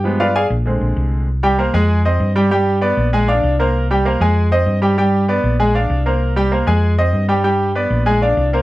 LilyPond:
<<
  \new Staff \with { instrumentName = "Grand piano" } { \time 4/4 \key c \minor \tempo 4 = 194 <f aes b g' g''>8 <f' b' d'' f''>8 <aes' d'' f'' aes''>8 r8 <d aes c'>2 | r8 <g g' g''>8 <bes bes' c''>8 <aes aes' aes''>4 <c' c'' ees''>4 <g g' g''>8 | <g g' g''>4 <b b' d''>4 <aes aes' aes''>8 <d' d'' f''>4 <bes bes' c''>8~ | <bes bes' c''>8 <g g' g''>8 <bes bes' c''>8 <aes aes' aes''>4 <c' c'' ees''>4 <g g' g''>8 |
<g g' g''>4 <b b' d''>4 <aes aes' aes''>8 <d' d'' f''>4 <bes bes' c''>8~ | <bes bes' c''>8 <g g' g''>8 <bes bes' c''>8 <aes aes' aes''>4 <c' c'' ees''>4 <g g' g''>8 | <g g' g''>4 <b b' d''>4 <aes aes' aes''>8 <d' d'' f''>4 <bes bes' c''>8 | }
  \new Staff \with { instrumentName = "Fingered electric bass" } { \clef bass \time 4/4 \key c \minor g,4. bes,,4 bes,,8 c,4~ | c,4. f,4. g,4~ | g,4. bes,,4. c,4~ | c,4. f,4. g,4~ |
g,4. bes,,4. c,4~ | c,4. f,4. g,4~ | g,4. bes,,4. c,4 | }
>>